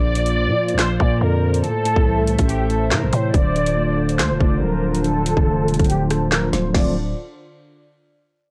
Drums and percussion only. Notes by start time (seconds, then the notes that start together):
0.15 closed hi-hat
0.26 closed hi-hat
0.68 closed hi-hat
0.79 snare, clap, closed hi-hat
1.00 kick
1.54 closed hi-hat
1.64 closed hi-hat
1.85 closed hi-hat
1.96 kick
2.27 closed hi-hat
2.39 kick, closed hi-hat
2.49 closed hi-hat
2.70 closed hi-hat
2.91 snare, clap
3.13 closed hi-hat
3.34 kick, closed hi-hat
3.56 closed hi-hat
3.66 closed hi-hat
4.09 closed hi-hat
4.19 snare, clap, closed hi-hat
4.41 kick
4.94 closed hi-hat
5.04 closed hi-hat
5.26 closed hi-hat
5.37 kick
5.68 closed hi-hat
5.74 closed hi-hat
5.79 kick, closed hi-hat
5.84 closed hi-hat
5.90 closed hi-hat
6.10 cross-stick, closed hi-hat
6.32 snare, clap
6.53 snare, closed hi-hat
6.74 kick, snare, crash